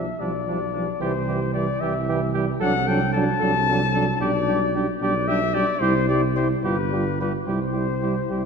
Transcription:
Already playing: B1 E5
0.19 B1 F3 G3 D4 D5
0.47 F3 G3 D4
0.73 F3 G3 D4
1.01 C2 E3 G3 G4 C5
1.27 E3 G3 G4
1.53 E3 G3 G4 D5
1.81 C2 E3 G3 G4 E5
2.08 E3 G3 G4
2.34 E3 G3 G4
2.60 C2 F#3 D4 A4 F#5
2.87 F#3 D4 A4 G5
3.13 F#3 D4 A4 A5
3.40 C2 F#3 D4 A4
3.68 F#3 D4 A4
3.93 F#3 D4 A4
4.20 B1 G3 D4 G4 D5
4.48 G3 D4 G4
4.74 G3 D4 G4
5.01 B1 G3 D4 G4 D5
5.27 G3 D4 G4 E5
5.53 G3 D4 G4 D5
5.80 C2 G3 E4 G4 C5
6.08 G3 E4 G4 D5
6.35 G3 E4 G4 C5
6.63 G1 G3 F4 G4 B4
6.91 G3 F4 G4
7.19 G3 F4 G4 B4
7.47 C2 G3 E4 G4 C5
7.73 G3 E4 G4
8.02 G3 E4 G4
8.30 C2 G3 E4 G4

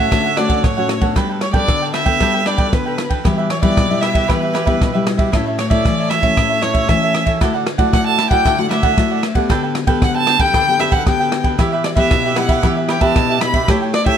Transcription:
Already playing: C#5 E5
0.00 A4
0.11 D3 A3 C#4 D4 F#4 A4 C#5 F#5, kick, cross-stick, ride
0.24 A4 C#5 F#5
0.36 A3 C#4 D4 F#4 A4 C#5 D5 F#5, cross-stick, ride
0.48 A4 C#5 F#5, kick, ride
0.57 D5
0.64 A2 C#5, kick, cross-stick, ride
0.77 A3 C#4 F#4 A4 C#5 F#5
0.89 muted cavaquinho stroke, cross-stick, ride
1.01 B3 D4 A4 C#5 F#5, kick, ride
1.15 G3 D4 A4 B4 G5, kick, cross-stick, ride
1.29 A4 B4 G5
1.41 C#5, muted cavaquinho stroke, cross-stick, ride
1.53 B3 D4 A4 B4 D5 G5, kick, ride
1.68 D3, kick, cross-stick, ride
1.82 A4 B4 G5
1.93 D4 A4 B4 E5 G5, cross-stick, ride
2.05 B3 D4 A4 B4 G5, kick, ride
2.20 G3 D4 A4 B4 G5, kick, cross-stick, ride
2.34 A4 B4 G5
2.45 B3 D4 A4 B4 D5 G5, cross-stick, ride
2.57 A4 B4 G5, kick, ride
2.72 D3 B3 D4 A4 B4, kick, cross-stick, ride
2.86 A4 B4 G5
2.98 muted cavaquinho stroke, cross-stick, ride
3.10 A4 B4 G5, kick, ride
3.24 E3 G3 B3 E4 G4 B4 E5, kick, cross-stick, ride
3.38 G4 B4 E5
3.50 C#5, cross-stick, ride
3.62 G3 B3 E4 G4 B4 D5 E5, kick, ride
3.77 B2, kick, cross-stick, ride
3.90 G3 B3 E4 G4 B4 E5
4.01 E4 G4 B4 E5, cross-stick, ride
4.13 G4 B4 E5, kick, ride
4.28 E3 G3 B3 E4 G4 B4 E5, kick, cross-stick, ride
4.42 G4 B4 E5
4.53 E4 G4 B4 E5, cross-stick, ride
4.66 G3 B3 E4 G4 B4 E5, kick, ride
4.81 B2, kick, cross-stick, ride
4.94 G3 B3 E4 G4 B4 E5
5.06 muted cavaquinho stroke, cross-stick, ride
5.18 G4 B4 E5, kick, ride
5.32 A2 A3 C#4 E4 A4 C#5 E5, kick, cross-stick, ride
5.46 A4 C#5 E5
5.58 C#5, muted cavaquinho stroke, cross-stick, ride
5.70 A3 E4 A4 C#5 D5 E5, kick, ride
5.85 E3, kick, cross-stick, ride
5.98 A4 C#5 E5
6.10 E4 A4 C#5 E5, cross-stick, ride
6.22 A3 C#4 E4 A4 C#5 E5, kick, ride
6.36 A2 E4 A4 C#5 E5, kick, cross-stick, ride
6.50 A4 C#5 E5
6.61 A3 C#4 E4 A4 C#5 E5, cross-stick, ride
6.74 A4 C#5 E5, kick, ride
6.89 E3 A3 C#4 E4 E5, kick, cross-stick, ride
7.02 A4 C#5 E5
7.14 muted cavaquinho stroke, cross-stick, ride
7.26 A4 C#5 E5, kick, ride
7.41 D3 A3 E4 F#4 A4 D5 F#5, kick, cross-stick, ride
7.54 A4 D5 F#5
7.66 muted cavaquinho stroke, cross-stick, ride
7.78 A3 E4 F#4 A4 D5 F#5, kick, ride
7.93 A3 F#5, kick, cross-stick, ride
8.06 A4 D5 F#5 A5
8.18 E4 A4 D5 F#5, cross-stick, ride
8.30 A3 E4 F#4 A4 D5 F#5 G5, kick, ride
8.45 D3 E4 A4 D5 F#5, kick, cross-stick, ride
8.58 A3 E4 F#4 A4 D5 F#5
8.70 A3 E4 F#4 A4 D5 E5 F#5, cross-stick, ride
8.83 A4 D5 F#5, kick, ride
8.97 A3 E4 F#4, kick, cross-stick, ride
9.11 A4 D5 F#5
9.23 muted cavaquinho stroke, cross-stick, ride
9.35 B3 G4 A4 D5 F#5, kick, ride
9.49 D3 D4 A4 B4 G5, kick, cross-stick, ride
9.63 A4 B4 G5
9.75 muted cavaquinho stroke, cross-stick, ride
9.87 B3 G4 A4 B4 G5, kick, ride
10.02 D3 F#5, kick, cross-stick, ride
10.15 A4 B4 G5 A5
10.27 D4 A4 B4 G5, cross-stick, ride
10.39 B3 G4 A4 B4 G5, kick, ride
10.53 D3 D4 A4 B4 G5, kick, cross-stick, ride
10.67 B3 G4 A4 G5
10.79 B3 D4 G4 A4 B4 E5 G5, cross-stick, ride
10.91 A4 B4 F#5 G5, kick, ride
11.07 D3 B3 G4 A4 G5, kick, cross-stick, ride
11.20 A4 B4 G5
11.32 muted cavaquinho stroke, cross-stick, ride
11.44 A4 B4 G5, kick, ride
11.58 E3 B3 E4 G4 B4 E5, kick, cross-stick, ride
11.72 G4 B4 E5
11.84 D5, muted cavaquinho stroke, cross-stick, ride
11.95 B3 E4 G4 B4 E5, kick, ride
12.11 B2, kick, cross-stick, ride
12.24 G4 B4 E5
12.36 B3 E4 G4 B4 E5 F#5, cross-stick, ride
12.48 G4 B4 E5, kick, ride
12.63 E3 B3 E4 G4 B4 E5, kick, cross-stick, ride
12.77 G4 B4 E5
12.88 E4 G4 B4 E5 G5, cross-stick, ride
13.01 B3 E4 G4 B4 E5 A5, kick, ride
13.16 B2, kick, cross-stick, ride
13.29 G4 B4 E5
13.41 B3 E4 G4 B5, cross-stick, ride
13.54 G4 B4 E5, kick, ride
13.68 A3 E4 G4 A4 C#5 G5, kick, cross-stick, ride
13.82 A4 C#5 G5
13.93 D5, muted cavaquinho stroke, cross-stick, ride
14.06 E4 G4 A4 C#5 E5 G5, kick, ride

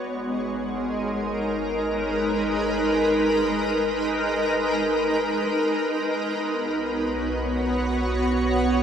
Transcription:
Already playing: G#1 G#3 B3 D#4 F#4 A#4 C#5
0.97 B4
5.93 B1 B3
6.30 F#4
6.47 C#5

